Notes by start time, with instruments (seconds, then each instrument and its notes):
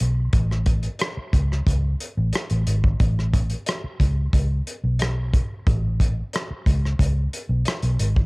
0.01 fingered electric bass B1
0.33 fingered electric bass A1, kick, closed hi-hat
0.51 cross-stick
0.66 kick, closed hi-hat
0.83 closed hi-hat
0.99 cross-stick, closed hi-hat
1.17 muted fingered electric bass stroke
1.33 fingered electric bass C#2, kick, closed hi-hat
1.52 cross-stick
1.67 fingered electric bass C#2, kick, closed hi-hat
2.00 closed hi-hat
2.17 fingered electric bass A1
2.33 cross-stick, closed hi-hat
2.50 fingered electric bass A1, closed hi-hat
2.67 fingered electric bass G#1, closed hi-hat
2.84 kick
3.00 fingered electric bass A1, kick, closed hi-hat
3.19 cross-stick
3.34 kick, closed hi-hat
3.50 closed hi-hat
3.66 cross-stick, closed hi-hat
3.84 muted fingered electric bass stroke
4.00 fingered electric bass C#2, kick, closed hi-hat
4.33 fingered electric bass C#2, kick, closed hi-hat
4.67 closed hi-hat
4.84 fingered electric bass B1
4.99 cross-stick, closed hi-hat
5.34 kick, closed hi-hat
5.67 fingered electric bass A1, kick, closed hi-hat
6.00 kick, closed hi-hat
6.33 cross-stick, closed hi-hat
6.50 muted fingered electric bass stroke
6.66 fingered electric bass C#2, kick, closed hi-hat
6.85 cross-stick
6.99 fingered electric bass C#2, kick, closed hi-hat
7.33 closed hi-hat
7.49 fingered electric bass B1
7.65 cross-stick, closed hi-hat
7.83 fingered electric bass B1, closed hi-hat
8.00 fingered electric bass G#1, closed hi-hat
8.16 kick